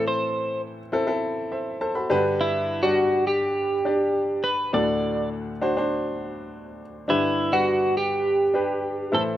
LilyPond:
<<
  \new Staff \with { instrumentName = "Clean electric guitar" } { \time 4/4 \key g \major \tempo 4 = 102 c''4 r2. | e'8. fis'8. g'2 b'8 | d''4 r2. | e'8. fis'8. g'2 a'8 | }
  \new Staff \with { instrumentName = "Grand piano" } { \time 4/4 \key g \major << { r2 r8 <c'' e''>8 <a' c'' a''>16 <fis' a' b''>8. | r1 | r1 | r1 | } \\ { <c' e' a'>4~ <c' e' a'>16 r16 <c' e' a'>16 <c' e' a'>4.~ <c' e' a'>16 <d' g' b'>8~ | <d' g' b'>8 r16 <g d' d''>4. r16 <d' g' d''>4~ <d' g' d''>16 r16 | <d' fis' a'>4~ <d' fis' a'>16 r16 <d' fis' c''>16 <d' fis' c''>4.~ <d' fis' c''>16 r8 | <d' g' b'>8. <g d' b'>4. r16 <d' g' b'>4 <e' a' c''>8 | } >> }
  \new Staff \with { instrumentName = "Grand piano" } { \clef bass \time 4/4 \key g \major <a, e>2.~ <a, e>8 <g, d>8~ | <g, d>2.~ <g, d>8 r8 | <d, a,>1 | <g, d>2.~ <g, d>8 <a, e>8 | }
>>